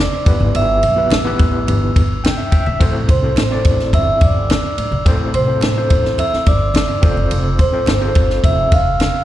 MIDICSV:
0, 0, Header, 1, 7, 480
1, 0, Start_track
1, 0, Key_signature, 0, "minor"
1, 0, Tempo, 563910
1, 466, Time_signature, 4, 2, 24, 8
1, 7865, End_track
2, 0, Start_track
2, 0, Title_t, "Glockenspiel"
2, 0, Program_c, 0, 9
2, 0, Note_on_c, 0, 86, 84
2, 430, Note_off_c, 0, 86, 0
2, 474, Note_on_c, 0, 88, 92
2, 916, Note_off_c, 0, 88, 0
2, 2641, Note_on_c, 0, 84, 72
2, 3320, Note_off_c, 0, 84, 0
2, 3353, Note_on_c, 0, 88, 97
2, 3573, Note_off_c, 0, 88, 0
2, 3597, Note_on_c, 0, 86, 76
2, 4278, Note_off_c, 0, 86, 0
2, 4546, Note_on_c, 0, 84, 75
2, 5232, Note_off_c, 0, 84, 0
2, 5276, Note_on_c, 0, 88, 93
2, 5382, Note_off_c, 0, 88, 0
2, 5517, Note_on_c, 0, 86, 79
2, 6197, Note_off_c, 0, 86, 0
2, 6458, Note_on_c, 0, 84, 77
2, 7147, Note_off_c, 0, 84, 0
2, 7187, Note_on_c, 0, 88, 82
2, 7409, Note_off_c, 0, 88, 0
2, 7424, Note_on_c, 0, 89, 82
2, 7865, Note_off_c, 0, 89, 0
2, 7865, End_track
3, 0, Start_track
3, 0, Title_t, "Vibraphone"
3, 0, Program_c, 1, 11
3, 0, Note_on_c, 1, 74, 100
3, 476, Note_on_c, 1, 76, 109
3, 490, Note_off_c, 1, 74, 0
3, 918, Note_off_c, 1, 76, 0
3, 2641, Note_on_c, 1, 72, 89
3, 3355, Note_on_c, 1, 76, 110
3, 3375, Note_off_c, 1, 72, 0
3, 3590, Note_on_c, 1, 74, 95
3, 3598, Note_off_c, 1, 76, 0
3, 4274, Note_off_c, 1, 74, 0
3, 4554, Note_on_c, 1, 72, 92
3, 5267, Note_on_c, 1, 76, 101
3, 5291, Note_off_c, 1, 72, 0
3, 5374, Note_off_c, 1, 76, 0
3, 5513, Note_on_c, 1, 74, 96
3, 6195, Note_off_c, 1, 74, 0
3, 6473, Note_on_c, 1, 72, 95
3, 7187, Note_on_c, 1, 76, 98
3, 7209, Note_off_c, 1, 72, 0
3, 7432, Note_off_c, 1, 76, 0
3, 7437, Note_on_c, 1, 77, 114
3, 7865, Note_off_c, 1, 77, 0
3, 7865, End_track
4, 0, Start_track
4, 0, Title_t, "Tine electric piano"
4, 0, Program_c, 2, 4
4, 214, Note_on_c, 2, 59, 74
4, 220, Note_on_c, 2, 64, 77
4, 225, Note_on_c, 2, 43, 65
4, 227, Note_on_c, 2, 67, 72
4, 229, Note_on_c, 2, 71, 84
4, 700, Note_off_c, 2, 59, 0
4, 703, Note_off_c, 2, 64, 0
4, 706, Note_off_c, 2, 67, 0
4, 707, Note_off_c, 2, 71, 0
4, 815, Note_on_c, 2, 59, 75
4, 819, Note_on_c, 2, 64, 68
4, 827, Note_on_c, 2, 67, 72
4, 832, Note_on_c, 2, 71, 85
4, 911, Note_off_c, 2, 43, 0
4, 978, Note_off_c, 2, 59, 0
4, 980, Note_off_c, 2, 64, 0
4, 984, Note_off_c, 2, 67, 0
4, 987, Note_off_c, 2, 71, 0
4, 1064, Note_on_c, 2, 59, 94
4, 1070, Note_on_c, 2, 64, 86
4, 1074, Note_on_c, 2, 67, 90
4, 1081, Note_on_c, 2, 71, 101
4, 1697, Note_off_c, 2, 59, 0
4, 1700, Note_off_c, 2, 64, 0
4, 1702, Note_off_c, 2, 67, 0
4, 1706, Note_off_c, 2, 71, 0
4, 1905, Note_on_c, 2, 79, 74
4, 2023, Note_on_c, 2, 76, 71
4, 2129, Note_off_c, 2, 79, 0
4, 2138, Note_off_c, 2, 76, 0
4, 2142, Note_on_c, 2, 79, 72
4, 2149, Note_on_c, 2, 76, 70
4, 2258, Note_off_c, 2, 79, 0
4, 2259, Note_off_c, 2, 76, 0
4, 2269, Note_on_c, 2, 76, 69
4, 2381, Note_on_c, 2, 60, 86
4, 2389, Note_on_c, 2, 64, 80
4, 2393, Note_on_c, 2, 45, 72
4, 2393, Note_on_c, 2, 69, 84
4, 2400, Note_on_c, 2, 72, 99
4, 2495, Note_off_c, 2, 76, 0
4, 2621, Note_off_c, 2, 60, 0
4, 2624, Note_off_c, 2, 64, 0
4, 2626, Note_off_c, 2, 69, 0
4, 2630, Note_off_c, 2, 72, 0
4, 2741, Note_on_c, 2, 60, 72
4, 2746, Note_on_c, 2, 64, 68
4, 2750, Note_on_c, 2, 69, 70
4, 2756, Note_on_c, 2, 72, 84
4, 2901, Note_off_c, 2, 60, 0
4, 2904, Note_off_c, 2, 64, 0
4, 2906, Note_off_c, 2, 69, 0
4, 2909, Note_off_c, 2, 72, 0
4, 2982, Note_on_c, 2, 60, 78
4, 2986, Note_on_c, 2, 64, 72
4, 2992, Note_on_c, 2, 69, 67
4, 2994, Note_on_c, 2, 74, 89
4, 3075, Note_off_c, 2, 45, 0
4, 3616, Note_off_c, 2, 60, 0
4, 3619, Note_off_c, 2, 64, 0
4, 3621, Note_off_c, 2, 69, 0
4, 3623, Note_off_c, 2, 74, 0
4, 4302, Note_on_c, 2, 60, 89
4, 4304, Note_on_c, 2, 64, 77
4, 4305, Note_on_c, 2, 45, 81
4, 4309, Note_on_c, 2, 69, 80
4, 4315, Note_on_c, 2, 72, 95
4, 4541, Note_off_c, 2, 60, 0
4, 4542, Note_off_c, 2, 64, 0
4, 4545, Note_off_c, 2, 69, 0
4, 4548, Note_off_c, 2, 72, 0
4, 4663, Note_on_c, 2, 60, 81
4, 4666, Note_on_c, 2, 64, 67
4, 4670, Note_on_c, 2, 69, 69
4, 4676, Note_on_c, 2, 72, 83
4, 4823, Note_off_c, 2, 60, 0
4, 4824, Note_off_c, 2, 64, 0
4, 4826, Note_off_c, 2, 69, 0
4, 4829, Note_off_c, 2, 72, 0
4, 4908, Note_on_c, 2, 60, 78
4, 4913, Note_on_c, 2, 64, 69
4, 4917, Note_on_c, 2, 69, 72
4, 4919, Note_on_c, 2, 72, 89
4, 4992, Note_off_c, 2, 45, 0
4, 5540, Note_off_c, 2, 60, 0
4, 5542, Note_off_c, 2, 64, 0
4, 5544, Note_off_c, 2, 69, 0
4, 5545, Note_off_c, 2, 72, 0
4, 5971, Note_on_c, 2, 60, 80
4, 5977, Note_on_c, 2, 65, 76
4, 5982, Note_on_c, 2, 69, 75
4, 5984, Note_on_c, 2, 72, 93
4, 6458, Note_off_c, 2, 60, 0
4, 6461, Note_off_c, 2, 65, 0
4, 6463, Note_off_c, 2, 69, 0
4, 6464, Note_off_c, 2, 72, 0
4, 6572, Note_on_c, 2, 60, 77
4, 6577, Note_on_c, 2, 65, 68
4, 6583, Note_on_c, 2, 69, 73
4, 6586, Note_on_c, 2, 72, 84
4, 6737, Note_off_c, 2, 60, 0
4, 6739, Note_off_c, 2, 65, 0
4, 6742, Note_off_c, 2, 69, 0
4, 6743, Note_off_c, 2, 72, 0
4, 6810, Note_on_c, 2, 60, 75
4, 6816, Note_on_c, 2, 65, 76
4, 6820, Note_on_c, 2, 68, 62
4, 6824, Note_on_c, 2, 72, 91
4, 6877, Note_on_c, 2, 69, 74
4, 6878, Note_off_c, 2, 68, 0
4, 7449, Note_off_c, 2, 60, 0
4, 7452, Note_off_c, 2, 65, 0
4, 7456, Note_off_c, 2, 72, 0
4, 7482, Note_off_c, 2, 69, 0
4, 7865, End_track
5, 0, Start_track
5, 0, Title_t, "Upright bass"
5, 0, Program_c, 3, 32
5, 225, Note_on_c, 3, 31, 98
5, 324, Note_off_c, 3, 31, 0
5, 345, Note_on_c, 3, 32, 103
5, 444, Note_off_c, 3, 32, 0
5, 465, Note_on_c, 3, 31, 102
5, 663, Note_off_c, 3, 31, 0
5, 710, Note_on_c, 3, 35, 90
5, 906, Note_off_c, 3, 35, 0
5, 949, Note_on_c, 3, 33, 92
5, 1146, Note_off_c, 3, 33, 0
5, 1192, Note_on_c, 3, 33, 90
5, 1387, Note_off_c, 3, 33, 0
5, 1426, Note_on_c, 3, 31, 102
5, 1624, Note_off_c, 3, 31, 0
5, 1670, Note_on_c, 3, 31, 92
5, 1965, Note_off_c, 3, 31, 0
5, 2149, Note_on_c, 3, 33, 85
5, 2246, Note_off_c, 3, 33, 0
5, 2275, Note_on_c, 3, 34, 95
5, 2370, Note_off_c, 3, 34, 0
5, 2390, Note_on_c, 3, 33, 101
5, 2586, Note_off_c, 3, 33, 0
5, 2628, Note_on_c, 3, 36, 97
5, 2825, Note_off_c, 3, 36, 0
5, 2874, Note_on_c, 3, 33, 97
5, 3068, Note_off_c, 3, 33, 0
5, 3112, Note_on_c, 3, 33, 104
5, 3307, Note_off_c, 3, 33, 0
5, 3347, Note_on_c, 3, 31, 104
5, 3544, Note_off_c, 3, 31, 0
5, 3586, Note_on_c, 3, 31, 91
5, 3883, Note_off_c, 3, 31, 0
5, 4068, Note_on_c, 3, 33, 91
5, 4166, Note_off_c, 3, 33, 0
5, 4181, Note_on_c, 3, 34, 92
5, 4282, Note_off_c, 3, 34, 0
5, 4306, Note_on_c, 3, 33, 105
5, 4504, Note_off_c, 3, 33, 0
5, 4549, Note_on_c, 3, 36, 90
5, 4746, Note_off_c, 3, 36, 0
5, 4793, Note_on_c, 3, 33, 92
5, 4988, Note_off_c, 3, 33, 0
5, 5031, Note_on_c, 3, 33, 88
5, 5227, Note_off_c, 3, 33, 0
5, 5509, Note_on_c, 3, 31, 96
5, 5805, Note_off_c, 3, 31, 0
5, 5985, Note_on_c, 3, 29, 104
5, 6084, Note_off_c, 3, 29, 0
5, 6105, Note_on_c, 3, 30, 102
5, 6204, Note_off_c, 3, 30, 0
5, 6229, Note_on_c, 3, 29, 103
5, 6425, Note_off_c, 3, 29, 0
5, 6704, Note_on_c, 3, 31, 102
5, 6902, Note_off_c, 3, 31, 0
5, 6946, Note_on_c, 3, 31, 85
5, 7143, Note_off_c, 3, 31, 0
5, 7182, Note_on_c, 3, 29, 94
5, 7380, Note_off_c, 3, 29, 0
5, 7423, Note_on_c, 3, 29, 88
5, 7720, Note_off_c, 3, 29, 0
5, 7865, End_track
6, 0, Start_track
6, 0, Title_t, "Muted upright bass strokes"
6, 5393, Note_on_c, 9, 29, 49
6, 5478, Note_off_c, 9, 29, 0
6, 7865, End_track
7, 0, Start_track
7, 0, Title_t, "Drums"
7, 0, Note_on_c, 9, 38, 104
7, 82, Note_off_c, 9, 38, 0
7, 222, Note_on_c, 9, 51, 62
7, 225, Note_on_c, 9, 36, 120
7, 307, Note_off_c, 9, 51, 0
7, 310, Note_off_c, 9, 36, 0
7, 339, Note_on_c, 9, 63, 71
7, 424, Note_off_c, 9, 63, 0
7, 465, Note_on_c, 9, 51, 67
7, 550, Note_off_c, 9, 51, 0
7, 704, Note_on_c, 9, 51, 61
7, 710, Note_on_c, 9, 62, 50
7, 789, Note_off_c, 9, 51, 0
7, 795, Note_off_c, 9, 62, 0
7, 940, Note_on_c, 9, 63, 75
7, 947, Note_on_c, 9, 51, 77
7, 956, Note_on_c, 9, 38, 122
7, 1026, Note_off_c, 9, 63, 0
7, 1032, Note_off_c, 9, 51, 0
7, 1042, Note_off_c, 9, 38, 0
7, 1185, Note_on_c, 9, 51, 58
7, 1189, Note_on_c, 9, 36, 97
7, 1270, Note_off_c, 9, 51, 0
7, 1274, Note_off_c, 9, 36, 0
7, 1430, Note_on_c, 9, 51, 66
7, 1434, Note_on_c, 9, 62, 45
7, 1434, Note_on_c, 9, 64, 69
7, 1515, Note_off_c, 9, 51, 0
7, 1519, Note_off_c, 9, 62, 0
7, 1519, Note_off_c, 9, 64, 0
7, 1669, Note_on_c, 9, 36, 99
7, 1670, Note_on_c, 9, 51, 64
7, 1672, Note_on_c, 9, 62, 54
7, 1754, Note_off_c, 9, 36, 0
7, 1755, Note_off_c, 9, 51, 0
7, 1757, Note_off_c, 9, 62, 0
7, 1911, Note_on_c, 9, 51, 67
7, 1913, Note_on_c, 9, 63, 71
7, 1922, Note_on_c, 9, 38, 106
7, 1996, Note_off_c, 9, 51, 0
7, 1999, Note_off_c, 9, 63, 0
7, 2007, Note_off_c, 9, 38, 0
7, 2145, Note_on_c, 9, 51, 62
7, 2147, Note_on_c, 9, 36, 97
7, 2230, Note_off_c, 9, 51, 0
7, 2232, Note_off_c, 9, 36, 0
7, 2267, Note_on_c, 9, 63, 75
7, 2352, Note_off_c, 9, 63, 0
7, 2388, Note_on_c, 9, 36, 107
7, 2390, Note_on_c, 9, 51, 69
7, 2474, Note_off_c, 9, 36, 0
7, 2475, Note_off_c, 9, 51, 0
7, 2628, Note_on_c, 9, 36, 89
7, 2628, Note_on_c, 9, 51, 64
7, 2637, Note_on_c, 9, 62, 49
7, 2713, Note_off_c, 9, 36, 0
7, 2713, Note_off_c, 9, 51, 0
7, 2722, Note_off_c, 9, 62, 0
7, 2861, Note_on_c, 9, 63, 69
7, 2867, Note_on_c, 9, 51, 78
7, 2877, Note_on_c, 9, 38, 123
7, 2947, Note_off_c, 9, 63, 0
7, 2952, Note_off_c, 9, 51, 0
7, 2962, Note_off_c, 9, 38, 0
7, 3103, Note_on_c, 9, 51, 60
7, 3107, Note_on_c, 9, 62, 36
7, 3110, Note_on_c, 9, 36, 96
7, 3189, Note_off_c, 9, 51, 0
7, 3192, Note_off_c, 9, 62, 0
7, 3195, Note_off_c, 9, 36, 0
7, 3230, Note_on_c, 9, 38, 34
7, 3315, Note_off_c, 9, 38, 0
7, 3346, Note_on_c, 9, 36, 87
7, 3346, Note_on_c, 9, 62, 51
7, 3349, Note_on_c, 9, 51, 64
7, 3431, Note_off_c, 9, 62, 0
7, 3432, Note_off_c, 9, 36, 0
7, 3434, Note_off_c, 9, 51, 0
7, 3583, Note_on_c, 9, 51, 64
7, 3588, Note_on_c, 9, 36, 99
7, 3588, Note_on_c, 9, 62, 57
7, 3588, Note_on_c, 9, 64, 76
7, 3668, Note_off_c, 9, 51, 0
7, 3673, Note_off_c, 9, 36, 0
7, 3673, Note_off_c, 9, 62, 0
7, 3673, Note_off_c, 9, 64, 0
7, 3828, Note_on_c, 9, 51, 73
7, 3832, Note_on_c, 9, 63, 72
7, 3839, Note_on_c, 9, 38, 108
7, 3913, Note_off_c, 9, 51, 0
7, 3917, Note_off_c, 9, 63, 0
7, 3924, Note_off_c, 9, 38, 0
7, 4068, Note_on_c, 9, 51, 63
7, 4153, Note_off_c, 9, 51, 0
7, 4188, Note_on_c, 9, 63, 71
7, 4273, Note_off_c, 9, 63, 0
7, 4307, Note_on_c, 9, 36, 108
7, 4307, Note_on_c, 9, 51, 68
7, 4392, Note_off_c, 9, 36, 0
7, 4392, Note_off_c, 9, 51, 0
7, 4544, Note_on_c, 9, 51, 59
7, 4552, Note_on_c, 9, 62, 50
7, 4629, Note_off_c, 9, 51, 0
7, 4638, Note_off_c, 9, 62, 0
7, 4777, Note_on_c, 9, 63, 71
7, 4786, Note_on_c, 9, 51, 78
7, 4796, Note_on_c, 9, 38, 123
7, 4862, Note_off_c, 9, 63, 0
7, 4871, Note_off_c, 9, 51, 0
7, 4881, Note_off_c, 9, 38, 0
7, 5023, Note_on_c, 9, 62, 33
7, 5024, Note_on_c, 9, 51, 61
7, 5028, Note_on_c, 9, 36, 99
7, 5108, Note_off_c, 9, 62, 0
7, 5109, Note_off_c, 9, 51, 0
7, 5113, Note_off_c, 9, 36, 0
7, 5150, Note_on_c, 9, 38, 34
7, 5236, Note_off_c, 9, 38, 0
7, 5261, Note_on_c, 9, 62, 47
7, 5261, Note_on_c, 9, 64, 69
7, 5266, Note_on_c, 9, 51, 68
7, 5346, Note_off_c, 9, 62, 0
7, 5346, Note_off_c, 9, 64, 0
7, 5351, Note_off_c, 9, 51, 0
7, 5391, Note_on_c, 9, 38, 36
7, 5476, Note_off_c, 9, 38, 0
7, 5502, Note_on_c, 9, 51, 66
7, 5502, Note_on_c, 9, 62, 56
7, 5505, Note_on_c, 9, 36, 96
7, 5587, Note_off_c, 9, 51, 0
7, 5587, Note_off_c, 9, 62, 0
7, 5591, Note_off_c, 9, 36, 0
7, 5738, Note_on_c, 9, 63, 73
7, 5742, Note_on_c, 9, 51, 71
7, 5753, Note_on_c, 9, 38, 107
7, 5823, Note_off_c, 9, 63, 0
7, 5827, Note_off_c, 9, 51, 0
7, 5838, Note_off_c, 9, 38, 0
7, 5981, Note_on_c, 9, 51, 64
7, 5984, Note_on_c, 9, 36, 120
7, 6066, Note_off_c, 9, 51, 0
7, 6069, Note_off_c, 9, 36, 0
7, 6105, Note_on_c, 9, 63, 76
7, 6190, Note_off_c, 9, 63, 0
7, 6221, Note_on_c, 9, 51, 72
7, 6306, Note_off_c, 9, 51, 0
7, 6460, Note_on_c, 9, 51, 61
7, 6462, Note_on_c, 9, 36, 92
7, 6467, Note_on_c, 9, 62, 53
7, 6545, Note_off_c, 9, 51, 0
7, 6547, Note_off_c, 9, 36, 0
7, 6552, Note_off_c, 9, 62, 0
7, 6692, Note_on_c, 9, 63, 70
7, 6700, Note_on_c, 9, 51, 73
7, 6710, Note_on_c, 9, 38, 127
7, 6777, Note_off_c, 9, 63, 0
7, 6785, Note_off_c, 9, 51, 0
7, 6795, Note_off_c, 9, 38, 0
7, 6939, Note_on_c, 9, 51, 61
7, 6945, Note_on_c, 9, 36, 97
7, 7024, Note_off_c, 9, 51, 0
7, 7030, Note_off_c, 9, 36, 0
7, 7065, Note_on_c, 9, 38, 35
7, 7150, Note_off_c, 9, 38, 0
7, 7181, Note_on_c, 9, 36, 98
7, 7183, Note_on_c, 9, 51, 65
7, 7188, Note_on_c, 9, 62, 46
7, 7266, Note_off_c, 9, 36, 0
7, 7268, Note_off_c, 9, 51, 0
7, 7273, Note_off_c, 9, 62, 0
7, 7420, Note_on_c, 9, 51, 65
7, 7423, Note_on_c, 9, 36, 96
7, 7424, Note_on_c, 9, 62, 55
7, 7424, Note_on_c, 9, 64, 82
7, 7505, Note_off_c, 9, 51, 0
7, 7508, Note_off_c, 9, 36, 0
7, 7509, Note_off_c, 9, 62, 0
7, 7509, Note_off_c, 9, 64, 0
7, 7658, Note_on_c, 9, 63, 70
7, 7660, Note_on_c, 9, 51, 67
7, 7671, Note_on_c, 9, 38, 102
7, 7743, Note_off_c, 9, 63, 0
7, 7745, Note_off_c, 9, 51, 0
7, 7756, Note_off_c, 9, 38, 0
7, 7865, End_track
0, 0, End_of_file